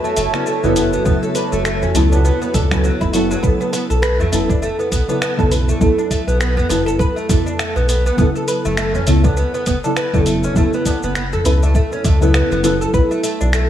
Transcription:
Already playing: A3 F#4 A4 C#5 E5 A5
0.04 A3, shaker
0.17 F#1 A3, open hi-hat, shaker
0.33 C#3 F#3 B3 C#4 E4 A4, finger snap, tabla na, shaker
0.46 A3, shaker
0.63 F#1 C#3 F#3 B3 E4 A4, tabla na, tabla tin, tabla ge, shaker
0.76 B3, open hi-hat, shaker
0.93 B3, tabla na, shaker
1.04 F#1 C#3 F#3 B3 E4 A4, kick, shaker
1.23 A4, shaker
1.35 B4, open hi-hat, tabla na, shaker
1.52 F#1 A3, shaker
1.65 A3, finger snap, shaker
1.82 C#4, tabla ge, shaker
1.94 C#2 C#3 F#3 A3 B3 E4 A4, open hi-hat, shaker
2.12 B3, tabla na, tabla tin, shaker
2.25 B3, shaker
2.42 B3, tabla tin, shaker
2.54 C#2 A4, kick, open hi-hat, tabla na, tabla ge, shaker
2.71 C#3 F#3 B3 C#4 E4 A4, finger snap, kick, shaker
2.84 F#3, shaker
3.01 F#1 E4, kick, shaker
3.13 C#3 F#3 B3 E4 F#4 A4, open hi-hat, shaker
3.31 F#3, tabla na, shaker
3.42 B1 C#3 F#3 B3 E4 A4, kick, shaker
3.61 B3, shaker
3.73 B3, open hi-hat, shaker
3.90 B1 A4, shaker
4.02 B4, finger snap, shaker
4.20 A3, tabla ge, shaker
4.32 F#1 C#3 F#3 A3 B3 E4 A4, open hi-hat, shaker
4.49 D4, kick, tabla na, tabla tin, shaker
4.62 A3, shaker
4.79 B3, shaker
4.92 B1 B3, kick, open hi-hat, shaker
5.08 C#3 F#3 B3 E4 A4, tabla na, shaker
5.22 B3, finger snap, shaker
5.37 B1 C#3 F#3 B3 E4 A4, kick, tabla na, tabla tin, tabla ge, shaker
5.51 B4, open hi-hat, shaker
5.69 A3, tabla na, shaker
5.80 B1 F#3 A3 B3 E4 A4, kick, shaker
5.98 D4, shaker
6.11 A3, kick, open hi-hat, shaker
6.28 B1 B3, shaker
6.40 B3, finger snap, shaker
6.57 B3, tabla ge, shaker
6.69 F#1 F#3 B3 E4 A4, open hi-hat, shaker
6.86 A4, tabla tin, shaker
6.99 B4, kick, shaker
7.16 A3, tabla tin, shaker
7.29 B1 C#3 F#3 A3 B3 E4 A4, kick, open hi-hat, tabla na, tabla ge, shaker
7.46 D4, tabla tin, shaker
7.59 A3, finger snap, shaker
7.76 B1 B3, shaker
7.89 B3, open hi-hat, shaker
8.06 B3, shaker
8.17 F#1 C#3 F#3 B3 E4, kick, shaker
8.21 A4
8.36 A4, shaker
8.48 B4, open hi-hat, shaker
8.65 F#1 A3, shaker
8.77 A3, finger snap, shaker
8.94 C#4, tabla ge, shaker
9.07 C#2 C#3 F#3 A3 B3 E4 A4, open hi-hat, shaker
9.24 B3, kick, tabla na, tabla tin, shaker
9.37 B3, shaker
9.54 B3, shaker
9.66 F#1 B3, kick, open hi-hat, shaker
9.84 C#3 F#3 B3 E4 A4, tabla na, shaker
9.97 B4, finger snap, shaker
10.13 F#1 C#3 F#3 A3 B3 E4 A4, kick, tabla na, tabla tin, tabla ge, shaker
10.26 A3, open hi-hat, shaker
10.43 C#4, tabla na, shaker
10.54 F#1 C#3 F#3 A3 B3 E4, kick, shaker
10.58 A4
10.73 B3, shaker
10.86 B3, kick, open hi-hat, tabla na, shaker
11.03 F#1 B3, shaker
11.15 B3, finger snap, shaker
11.33 A4, tabla ge, shaker
11.44 C#2 C#3 F#3 B3 E4 A4 B4, open hi-hat, shaker
11.63 A3, tabla na, tabla tin, shaker
11.75 A3, kick, shaker
11.92 C#4, tabla tin, shaker
12.04 C#2 A3, kick, open hi-hat, tabla na, tabla ge, shaker
12.20 C#3 F#3 B3 E4 A4, tabla tin, shaker
12.34 B3, finger snap, shaker
12.52 F#1 B3, shaker
12.63 C#3 F#3 B3 E4 A4, open hi-hat, shaker
12.81 A4, shaker
12.93 B1 F#3 B3 E4 A4 B4, kick, shaker
13.11 A3, shaker
13.23 A3, open hi-hat, shaker
13.41 B1 D4, shaker
13.53 A3, finger snap, shaker

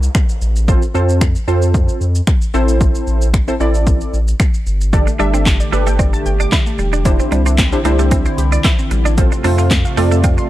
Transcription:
Already playing: downlifter
0.03 shaker
0.15 finger snap, kick, shaker
0.29 shaker
0.42 A1, shaker
0.56 shaker
0.68 C4 F4 A4 C5, kick, shaker
0.82 shaker
0.94 F2 C4 F4 A4 C5, shaker
1.09 shaker
1.21 finger snap, kick, shaker
1.35 shaker
1.48 F2 C4 F4 A4 C5, shaker
1.62 shaker
1.74 kick, shaker
1.89 shaker
2.01 F2, shaker
2.15 shaker
2.27 finger snap, kick, shaker
2.42 shaker
2.54 A1 C4 E4 A4 C5, shaker
2.69 shaker
2.81 kick, shaker
2.95 shaker
3.07 A1, shaker
3.22 shaker
3.34 finger snap, kick, shaker
3.48 C4 E4 A4 C5, shaker
3.60 A1 C4 E4 A4 D5, shaker
3.74 shaker
3.87 kick, shaker
4.01 shaker
4.14 A1, shaker
4.28 shaker
4.40 finger snap, kick, shaker
4.54 shaker
4.67 G1, shaker
4.81 shaker
4.93 D3 A3 D4 G4 A4 D5, kick, shaker
5.07 A3, muted clean electric guitar stroke, shaker
5.19 G1 G3 D4 G4 A4 E5, shaker
5.34 C4 D4, shaker
5.46 A3, muted clean electric guitar stroke, kick, snare, clap, shaker
5.60 D5, shaker
5.72 G1 A3 D4 G4 A4 B4, shaker
5.87 A3 G5, shaker
5.99 C4 D5, kick, shaker
6.13 A5, muted clean electric guitar stroke, shaker
6.26 G1 G5, shaker
6.40 D4 D6, shaker
6.52 D3 E4, kick, snare, clap, shaker
6.66 A3, shaker
6.79 E1 G3, muted clean electric guitar stroke, shaker
6.93 D4, shaker
7.05 D3 E3 C4 D4 E4 G4 C5, kick, closed hi-hat, shaker
7.19 C4, muted clean electric guitar stroke, shaker
7.32 C2 G3 D4, closed hi-hat, shaker
7.46 C4 D4, shaker
7.58 C4, muted clean electric guitar stroke, kick, snare, clap, closed hi-hat, shaker
7.72 D4 E4 G4 C5, shaker
7.85 C2 A3 D4 E4 G4 C5, closed hi-hat, shaker
7.99 A3 G4, shaker
8.11 C4 E4, kick, closed hi-hat, shaker
8.26 C5, muted clean electric guitar stroke, shaker
8.38 C2 G4, closed hi-hat, shaker
8.52 D4 D5, shaker
8.64 E3 E4, kick, snare, clap, closed hi-hat, shaker
8.79 C4, shaker
8.91 A1 G3, muted clean electric guitar stroke, closed hi-hat, shaker
9.05 D4, shaker
9.17 C3 F3 A3 C4 F4 A4 C5, kick, closed hi-hat, riser, shaker
9.32 C4, muted clean electric guitar stroke, shaker
9.44 F2 A3 C4 D4 F4 A4 C5, open hi-hat, shaker
9.58 C4 F4, shaker
9.71 C4, muted clean electric guitar stroke, kick, snare, clap, closed hi-hat, shaker
9.85 F5, shaker
9.97 F2 A3 C4 F4 A4 D5, open hi-hat, shaker
10.11 A3 A5, shaker
10.24 C4 F5, kick, closed hi-hat, shaker
10.38 C6, muted clean electric guitar stroke, shaker

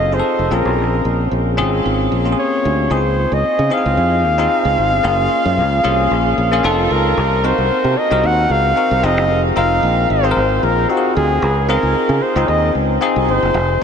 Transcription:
Already playing: F#1 C4 D#4 F4 G#4 A4 D#5
0.12 C4 D#4 F4 G#4 C5
0.19 A4
0.39 F1
0.51 A#1 C4 C#4 F4 G#4 A#4
0.65 B1
0.78 A#1
1.05 A#1
1.31 A#1
1.57 G#1 C4 C#4 F4 G#4
1.85 G#1
2.12 A#1
2.25 A#3 C#4 F4 G4
2.32 G#4
2.39 C#5
2.65 D2
2.90 C#2 C4 D#4 E4 G#4 C5
2.97 F4
3.32 C#2 D#5
3.44 muted fingered electric bass stroke
3.59 C#3
3.70 C4 D#4 E4 G#4 F5
3.77 F4
3.86 C#2
3.97 F2
4.24 D#2
4.38 C4 D#4 F4 G#4
4.65 C#2
4.78 G#1
4.92 G1
5.03 F#1 A#3 C#4 F4 G#4
5.45 F#2
5.57 C#2
5.83 C2 A#3 C#4 F4 G#4
6.11 A#1
6.38 A#1
6.52 A#3 C#4 F4 G#4
6.63 F1 C4 D#4 F4 A4
6.91 C#2 A#4
7.17 C2
7.44 C4 D#4 F#4 A#4 C5
7.58 C2
7.70 muted fingered electric bass stroke
7.84 C3
7.98 D#5
8.11 C2 C4 D#4 F#4 A#4
8.24 D#2 F#5
8.50 C#2 F5
8.76 C4 D#4 F#4 A#4
8.91 C2
9.03 F1 C4 D#4 F4 G#4 D#5
9.17 F#1
9.30 F1
9.56 F1 C4 D#4 F4 A#4 F5
9.83 A#1
10.10 G#1 C5
10.23 C4 D#4 F4 G#4
10.31 A#4
10.36 G#1
10.63 A#1 A#4
10.89 C4 D#4 F4 F#4 G4
10.97 G#4
11.16 D2 G#4
11.42 C#2
11.68 C4 D#4 F4 G#4 A#4
11.83 C#2
11.95 muted fingered electric bass stroke
12.09 C#3
12.22 C5
12.36 C#2 C4 D#4 F4 G#4
12.48 D#2 D#5
12.75 C#2
13.01 C4 D#4 F4 G#4
13.16 C2
13.28 G1 C5
13.42 F#1
13.54 F1

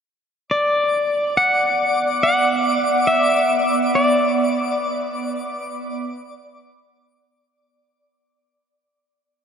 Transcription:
0.48 B3 D5 D6
1.37 F#5
2.23 F#5
3.07 E5
3.95 D5

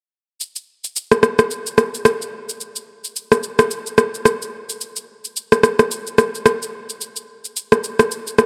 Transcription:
0.41 shaker
0.56 shaker
0.84 shaker
0.96 shaker
1.12 cross-stick, shaker
1.23 cross-stick, shaker
1.39 cross-stick, shaker
1.51 shaker
1.67 shaker
1.78 cross-stick, shaker
1.94 shaker
2.05 cross-stick, shaker
2.22 shaker
2.49 shaker
2.61 shaker
2.76 shaker
3.04 shaker
3.16 shaker
3.32 cross-stick, shaker
3.43 shaker
3.59 cross-stick, shaker
3.71 shaker
3.87 shaker
3.98 cross-stick, shaker
4.15 shaker
4.25 cross-stick, shaker
4.42 shaker
4.69 shaker
4.81 shaker
4.96 shaker
5.25 shaker
5.37 shaker
5.52 cross-stick, shaker
5.63 cross-stick, shaker
5.79 cross-stick, shaker
5.91 shaker
6.07 shaker
6.18 cross-stick, shaker
6.35 shaker
6.46 cross-stick, shaker
6.62 shaker
6.90 shaker
7.01 shaker
7.16 shaker
7.45 shaker
7.56 shaker
7.72 cross-stick, shaker
7.84 shaker
7.99 cross-stick, shaker
8.11 shaker
8.27 shaker
8.38 cross-stick, shaker

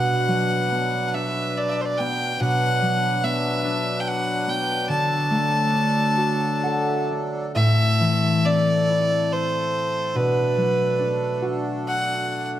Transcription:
Already playing: B2 F#3 B3 D4 E4 G4 B4 F#5
0.28 F#3
0.72 B3
1.08 F#5
1.13 D4 E5
1.57 D5
1.69 D5 E5
1.81 C5
1.85 D5
1.98 B3 G5
2.40 B2 F#3 D4 F#5
2.82 F#3
3.23 B3 E5
3.65 D4
4.00 G5
4.08 F#5
4.48 B3 G5
4.89 D3 A4 A5
5.31 A3
5.73 D4
6.18 F#4 A5
6.40 G5
6.63 A4 F#5
6.88 E5
7.11 D4 D5
7.54 A2 A3 C4 A4 E5
8.00 E3
8.45 C4 D5
8.90 E4
9.33 C5
10.14 B2 D4 B4
10.57 F#3
10.99 D4
11.42 F#4
11.88 F#5

